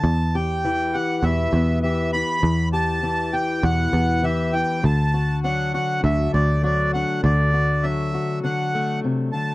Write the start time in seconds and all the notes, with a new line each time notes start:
Already playing: A5
0.04 E2
0.35 G4 G5
0.64 E3 E4
0.94 G4 F#5
1.23 E2 B2 E4 E5
1.53 E2 B3
1.83 E3 G4 E5
2.13 E4 B5
2.42 E2
2.73 G4 A5
3.03 E3 E4
3.33 G4 G5
3.63 E2 B2 E4 F#5
3.93 E2 B3
4.23 E3 G4 E5
4.53 E4 G5
4.83 D2 D3 A5
5.14 F#4
5.44 F#3 D4 F#5
5.74 F#4 F#5
6.03 D2 D3 D4 E5
6.34 D2 A3 D5
6.63 F#3 F#4 D5
6.94 D4 F#5
7.24 D2 D3 D5
7.54 F#4
7.83 F#3 D4 E5
8.14 F#4
8.44 D3 D4 F#5
8.75 A3
9.04 C3
9.32 D3 A5